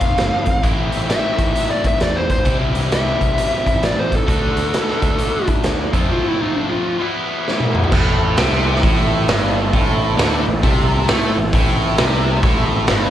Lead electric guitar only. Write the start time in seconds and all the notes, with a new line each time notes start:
Already playing: F5
1.10 E5
1.71 D5
1.87 E5
2.02 D5
2.17 C5
2.31 C5
2.93 E5
3.85 D5
3.99 C5
4.16 A4
6.13 F4
6.28 E4
6.41 D#4
6.56 D4
6.70 F4